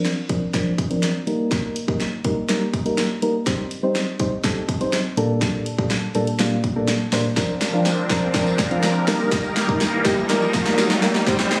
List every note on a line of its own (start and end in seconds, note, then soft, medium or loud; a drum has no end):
0.00 0.10 D4 medium
0.00 0.10 A#4 medium
0.05 snare medium
0.05 closed hi-hat medium
0.29 0.41 F3 medium
0.29 0.41 C4 medium
0.29 0.41 D4 medium
0.29 0.41 A#4 loud
0.29 kick medium
0.29 closed hi-hat medium
0.54 0.71 F3 medium
0.54 0.71 C4 medium
0.54 0.71 D4 medium
0.54 0.71 A#4 medium
0.54 kick medium
0.54 snare medium
0.54 closed hi-hat medium
0.78 kick medium
0.78 closed hi-hat medium
0.90 1.07 F3 medium
0.90 1.07 C4 medium
0.90 1.08 D4 medium
0.90 1.08 A#4 loud
0.90 closed hi-hat medium
1.03 snare medium
1.03 closed hi-hat loud
1.27 1.76 G3 medium
1.27 1.76 A#3 medium
1.27 1.76 D#4 medium
1.27 1.76 A#4 medium
1.27 closed hi-hat medium
1.52 kick loud
1.52 snare medium
1.52 closed hi-hat loud
1.76 closed hi-hat medium
1.88 2.05 G3 medium
1.88 2.05 A#3 medium
1.88 2.05 D#4 medium
1.88 2.05 A#4 medium
1.88 kick loud
2.00 snare medium
2.00 closed hi-hat medium
2.24 2.36 G3 medium
2.24 2.36 A#3 medium
2.24 2.36 D#4 medium
2.24 2.36 A#4 loud
2.24 kick medium
2.24 closed hi-hat medium
2.49 2.66 G3 medium
2.49 2.66 A#3 medium
2.49 2.66 D#4 medium
2.49 2.66 A#4 medium
2.49 snare medium
2.49 closed hi-hat medium
2.74 kick medium
2.74 closed hi-hat medium
2.86 3.03 G3 medium
2.86 3.03 A#3 medium
2.86 3.03 D#4 medium
2.86 3.03 A#4 loud
2.86 closed hi-hat medium
2.98 snare medium
2.98 closed hi-hat loud
3.22 3.34 G3 medium
3.22 3.34 A#3 medium
3.22 3.34 D#4 medium
3.22 3.34 A#4 medium
3.22 closed hi-hat medium
3.46 3.64 G3 medium
3.46 3.64 C4 medium
3.46 3.64 D#4 medium
3.46 3.64 C5 medium
3.46 kick loud
3.46 snare medium
3.46 closed hi-hat loud
3.71 closed hi-hat medium
3.83 4.00 G3 medium
3.83 4.00 C4 medium
3.83 4.00 D#4 medium
3.83 4.00 C5 medium
3.95 snare medium
3.95 closed hi-hat medium
4.20 4.31 G3 medium
4.20 4.31 C4 medium
4.20 4.31 D#4 medium
4.20 4.31 C5 medium
4.20 kick medium
4.20 closed hi-hat medium
4.44 4.61 G3 medium
4.44 4.61 C4 medium
4.44 4.61 D#4 medium
4.44 4.61 A4 medium
4.44 kick loud
4.44 snare medium
4.44 closed hi-hat medium
4.69 kick medium
4.69 closed hi-hat medium
4.81 4.98 G3 medium
4.81 4.98 C4 medium
4.81 4.98 D#4 medium
4.81 4.98 C5 loud
4.81 closed hi-hat medium
4.93 snare medium
4.93 closed hi-hat loud
5.17 5.66 A#2 medium
5.17 5.66 G3 medium
5.17 5.66 A#3 medium
5.17 5.66 D4 medium
5.17 5.66 A4 loud
5.17 closed hi-hat medium
5.42 kick loud
5.42 snare medium
5.42 closed hi-hat medium
5.66 closed hi-hat medium
5.78 5.95 A#2 medium
5.78 5.95 G3 medium
5.78 5.95 A#3 medium
5.78 5.95 D4 medium
5.78 5.95 A4 medium
5.78 kick loud
5.91 snare medium
5.91 closed hi-hat medium
6.15 6.26 A#2 medium
6.15 6.26 G3 medium
6.15 6.26 A#3 medium
6.15 6.26 D4 medium
6.15 6.26 A4 medium
6.15 closed hi-hat medium
6.27 closed hi-hat medium
6.39 6.56 A#2 medium
6.39 6.56 G3 medium
6.39 6.56 A#3 medium
6.39 6.56 D4 medium
6.39 6.56 F4 medium
6.39 snare medium
6.39 closed hi-hat medium
6.64 kick medium
6.64 closed hi-hat medium
6.76 6.93 A#2 medium
6.76 6.93 G3 medium
6.76 6.93 A#3 medium
6.76 6.93 D4 medium
6.76 6.93 A4 loud
6.88 snare medium
6.88 closed hi-hat loud
7.12 7.24 A#2 medium
7.12 7.24 G3 medium
7.12 7.24 A#3 medium
7.12 7.24 D4 medium
7.12 7.24 C5 medium
7.12 snare medium
7.12 open hi-hat medium
7.37 7.54 F3 medium
7.37 9.06 F3 medium
7.37 7.54 C4 medium
7.37 9.06 C4 medium
7.37 9.06 D4 medium
7.37 7.54 D4 medium
7.37 11.23 A#4 loud
7.37 7.54 A#4 medium
7.37 kick loud
7.37 snare medium
7.37 closed hi-hat loud
7.37 tambourine soft
7.37 riser medium
7.61 snare medium
7.61 closed hi-hat medium
7.61 tambourine soft
7.73 7.90 F3 medium
7.73 7.90 C4 medium
7.73 7.91 D4 medium
7.73 7.91 F4 medium
7.86 snare medium
7.86 closed hi-hat medium
7.86 tambourine medium
8.10 8.21 F3 medium
8.10 8.21 C4 medium
8.10 8.21 D4 medium
8.10 8.22 A#4 loud
8.10 kick medium
8.10 snare medium
8.10 closed hi-hat medium
8.10 tambourine soft
8.34 8.51 F3 medium
8.34 8.51 C4 medium
8.34 8.51 D4 medium
8.34 8.52 A#4 medium
8.34 kick loud
8.34 snare medium
8.34 closed hi-hat medium
8.34 tambourine medium
8.47 tambourine soft
8.59 kick medium
8.59 snare medium
8.59 closed hi-hat medium
8.59 tambourine medium
8.71 8.88 F3 medium
8.71 8.88 C4 medium
8.71 8.88 D4 medium
8.71 8.88 F4 loud
8.71 closed hi-hat medium
8.83 snare medium
8.83 closed hi-hat loud
8.83 tambourine medium
9.07 9.56 G3 medium
9.07 11.60 G3 medium
9.07 9.56 A#3 medium
9.07 11.25 A#3 medium
9.07 9.56 D#4 medium
9.07 11.60 D#4 medium
9.07 9.57 A#4 loud
9.07 snare loud
9.07 open hi-hat medium
9.20 tambourine soft
9.32 kick loud
9.32 snare medium
9.32 closed hi-hat loud
9.32 tambourine soft
9.44 tambourine soft
9.56 snare loud
9.56 closed hi-hat medium
9.56 tambourine soft
9.68 9.85 G3 medium
9.68 9.86 A#3 medium
9.68 9.86 D#4 medium
9.68 9.86 A#4 medium
9.68 kick loud
9.81 snare loud
9.81 closed hi-hat medium
9.81 tambourine medium
10.05 10.16 G3 medium
10.05 10.16 A#3 medium
10.05 10.17 D#4 medium
10.05 10.17 G4 loud
10.05 kick medium
10.05 snare medium
10.05 closed hi-hat medium
10.05 tambourine soft
10.18 tambourine soft
10.29 10.46 G3 medium
10.29 10.47 A#3 medium
10.29 10.47 D#4 medium
10.29 10.47 A#4 medium
10.29 snare medium
10.29 closed hi-hat medium
10.29 tambourine soft
10.42 tambourine soft
10.54 kick medium
10.54 snare loud
10.54 closed hi-hat medium
10.54 tambourine medium
10.66 10.83 G3 medium
10.66 10.83 A#3 medium
10.66 10.83 D#4 medium
10.66 10.83 A#4 loud
10.66 snare medium
10.66 closed hi-hat medium
10.66 tambourine soft
10.78 snare loud
10.78 closed hi-hat loud
10.78 tambourine medium
10.91 snare loud
11.03 11.14 G3 medium
11.03 11.14 A#3 medium
11.03 11.14 D#4 medium
11.03 11.14 A#4 medium
11.03 snare loud
11.03 open hi-hat medium
11.15 snare loud
11.15 tambourine soft
11.27 11.44 G3 medium
11.27 11.60 C4 medium
11.27 11.44 C4 medium
11.27 11.44 D#4 medium
11.27 11.60 C5 loud
11.27 11.44 C5 loud
11.27 kick loud
11.27 snare loud
11.27 closed hi-hat loud
11.27 tambourine medium
11.39 snare loud
11.39 tambourine soft
11.52 snare loud
11.52 closed hi-hat medium
11.52 tambourine soft